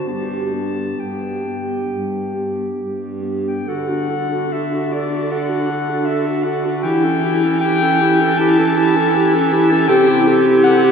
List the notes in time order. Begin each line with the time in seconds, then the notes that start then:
0.07 G2 B3 G4 A5
0.53 B3 G4
0.99 G2 G5
1.45 B3 G4
1.91 G2
2.34 B3 G4
2.78 G2
3.22 B3 G4
3.47 G5
3.66 D3 F#4 A4 F#5
3.88 D4 F#4
4.10 F#4 A4
4.29 D4 F#4
4.50 F#4 A4 E5
4.71 D4 F#4
4.92 F#4 A4 D5
5.10 D4 F#4
5.29 F#4 A4 F#5
5.49 D4 F#4
5.69 F#4 A4
5.90 D4 F#4
6.05 F#4 A4 E5
6.26 D4 F#4
6.43 F#4 A4 F#5
6.65 D4 F#4
6.83 E3 E4 G4 G5
7.04 C#4 A4
7.24 E4 G4
7.43 C#4 A4
7.61 E4 G4 G5
7.82 C#4 A4
8.01 E4 G4
8.20 C#4 A4
8.38 E4 G4 A5
8.58 C#4 A4
8.77 E4 G4
8.96 C#4 A4
9.16 E4 G4
9.35 C#4 A4
9.53 E4 G4
9.69 C#4 A4 A5
9.88 C3 G4 A4 G5
10.08 E4 G4
10.27 G4 A4
10.46 E4 G4
10.64 G4 A4 F#5
10.84 E4 G4